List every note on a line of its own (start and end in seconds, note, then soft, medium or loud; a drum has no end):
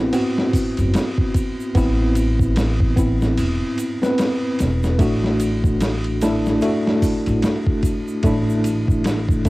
0.00 0.10 A1 medium
0.00 0.13 B3 medium
0.00 0.14 C4 medium
0.00 1.77 E4 medium
0.00 0.16 F#4 medium
0.13 1.71 B3 medium
0.13 1.72 C4 medium
0.13 1.73 F#4 medium
0.13 ride medium
0.13 shaker soft
0.38 snare medium
0.53 kick medium
0.53 open hi-hat medium
0.53 shaker medium
0.77 0.93 F#1 medium
0.77 ride soft
0.77 shaker soft
0.94 snare loud
0.94 ride medium
0.94 shaker soft
1.18 kick medium
1.34 kick medium
1.34 ride medium
1.34 shaker medium
1.60 shaker soft
1.75 3.35 A1 medium
1.75 2.93 B3 medium
1.75 2.93 C4 medium
1.75 2.94 E4 loud
1.75 kick loud
1.75 ride medium
1.75 shaker medium
2.15 ride medium
2.15 shaker medium
2.39 kick medium
2.39 shaker soft
2.56 snare loud
2.56 ride medium
2.56 shaker medium
2.80 kick medium
2.96 3.96 B3 medium
2.96 3.97 C4 medium
2.96 3.97 E4 medium
2.96 kick loud
2.96 ride medium
2.96 shaker medium
3.22 snare soft
3.22 shaker soft
3.37 3.59 E1 medium
3.37 ride medium
3.37 shaker soft
3.78 ride medium
3.78 shaker loud
4.02 4.10 B3 medium
4.02 4.11 C4 medium
4.02 4.11 B4 medium
4.02 snare medium
4.02 shaker soft
4.18 snare loud
4.18 ride medium
4.18 shaker soft
4.59 4.96 E1 medium
4.59 snare soft
4.59 ride medium
4.59 shaker medium
4.83 snare soft
4.83 shaker soft
4.99 6.59 A1 medium
4.99 6.17 A3 medium
4.99 6.18 D4 medium
4.99 6.18 F#4 medium
4.99 kick loud
4.99 ride medium
4.99 shaker soft
5.24 snare medium
5.40 ride medium
5.40 shaker medium
5.64 kick medium
5.64 shaker soft
5.81 snare loud
5.81 ride medium
5.81 shaker medium
6.04 ride soft
6.21 6.59 A3 medium
6.21 6.59 D4 medium
6.21 6.59 E4 loud
6.21 snare medium
6.21 ride medium
6.21 shaker medium
6.46 snare soft
6.46 shaker soft
6.61 8.20 A3 medium
6.61 8.21 D4 medium
6.61 8.21 F#4 medium
6.61 ride medium
6.61 shaker soft
6.87 snare soft
7.02 kick medium
7.02 open hi-hat medium
7.02 shaker medium
7.26 7.41 A1 medium
7.26 ride soft
7.26 shaker soft
7.42 snare loud
7.42 ride medium
7.42 shaker soft
7.67 kick medium
7.83 kick medium
7.83 ride medium
7.83 shaker loud
8.08 shaker soft
8.23 9.49 A1 medium
8.23 9.42 A3 medium
8.23 9.43 D4 medium
8.23 kick loud
8.23 ride medium
8.23 shaker medium
8.27 9.43 E4 medium
8.49 shaker soft
8.64 ride medium
8.64 shaker medium
8.88 kick medium
8.88 shaker soft
9.04 snare loud
9.04 ride medium
9.04 shaker soft
9.29 kick medium
9.29 shaker soft
9.45 9.49 A3 medium
9.45 kick medium
9.45 ride medium